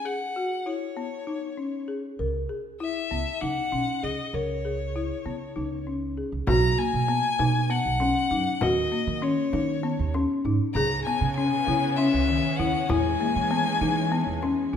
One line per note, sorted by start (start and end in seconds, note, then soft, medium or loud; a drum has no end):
0.05 0.21 G#4 medium
0.05 0.68 F#5 medium
0.36 0.52 F#4 medium
0.66 0.82 E4 medium
0.66 1.89 C#5 medium
0.97 1.12 B3 medium
1.27 1.43 D#4 medium
1.57 1.73 C#4 medium
1.88 2.04 G#4 medium
2.19 2.45 C#2 medium
2.19 2.35 A#4 medium
2.49 2.65 G#4 medium
2.80 2.96 E4 medium
2.80 3.43 E5 medium
3.11 3.24 C#2 medium
3.11 3.27 B3 medium
3.41 3.55 C#2 medium
3.41 3.57 D#4 medium
3.41 4.05 F#5 medium
3.72 3.85 B1 medium
3.72 3.88 C#4 medium
4.03 4.16 C#2 medium
4.03 4.19 G#4 medium
4.03 4.36 D#5 medium
4.33 5.10 C#2 medium
4.33 4.49 A#4 medium
4.33 5.87 C#5 medium
4.65 4.80 G#4 medium
4.96 5.11 E4 medium
5.26 5.51 C#3 medium
5.26 5.41 B3 medium
5.56 6.20 C#2 medium
5.56 5.71 D#4 medium
5.87 6.02 C#4 medium
6.17 6.33 G#4 soft
6.32 6.45 C#2 medium
6.47 6.73 B1 medium
6.47 6.63 F#4 medium
6.47 6.80 A#5 medium
6.47 frame drum medium
6.78 6.94 A#3 medium
6.78 7.72 G#5 loud
6.93 7.19 B2 medium
7.08 7.24 B3 medium
7.08 frame drum soft
7.39 7.77 B2 medium
7.39 7.55 D#4 medium
7.39 frame drum soft
7.70 7.85 B3 medium
7.70 8.63 F#5 medium
7.86 8.11 B1 medium
8.00 8.16 C#4 medium
8.00 frame drum soft
8.31 8.44 F#2 medium
8.31 8.47 D#4 medium
8.31 frame drum soft
8.61 8.87 D#2 medium
8.61 8.77 F#4 medium
8.61 9.24 D#5 medium
8.61 frame drum medium
8.92 9.07 A#3 medium
9.07 9.33 D#3 medium
9.22 9.38 C#4 medium
9.22 10.14 C#5 medium
9.22 frame drum soft
9.53 9.91 D#3 medium
9.53 9.69 D#4 medium
9.53 frame drum soft
9.83 9.99 B3 medium
9.99 10.24 D#2 medium
10.14 10.30 C#4 medium
10.14 frame drum soft
10.45 10.57 G#2 medium
10.45 10.61 D#4 medium
10.45 frame drum soft
10.74 11.01 C#2 medium
10.74 12.87 C#3 medium
10.74 12.87 B3 medium
10.74 14.77 C#4 medium
10.74 10.92 G#4 medium
10.74 11.03 A#5 medium
10.74 frame drum soft
11.05 11.22 B3 medium
11.05 11.34 G#5 medium
11.21 11.47 C#3 medium
11.36 11.53 C#4 medium
11.36 11.98 G#5 medium
11.36 frame drum soft
11.67 12.06 C#3 medium
11.67 11.83 E4 medium
11.67 frame drum soft
11.96 12.14 C#4 medium
11.96 12.59 E5 medium
12.14 12.39 C#2 medium
12.28 12.44 D#3 medium
12.28 frame drum soft
12.57 12.72 D#2 medium
12.57 12.75 E4 medium
12.57 12.91 F#5 medium
12.89 13.15 E2 medium
12.89 14.77 E3 medium
12.89 14.77 G#3 medium
12.89 13.05 E4 medium
12.89 14.73 G#5 medium
12.89 frame drum medium
13.20 13.36 A#3 medium
13.20 frame drum soft
13.36 13.61 E3 medium
13.51 13.66 B3 medium
13.81 14.20 E3 medium
13.81 13.97 D#4 medium
13.81 frame drum soft
14.12 14.28 B3 medium
14.12 frame drum soft
14.27 14.53 E2 medium
14.42 14.58 C#4 medium
14.42 frame drum soft
14.73 14.77 B1 medium
14.73 14.77 D#4 medium
14.73 frame drum soft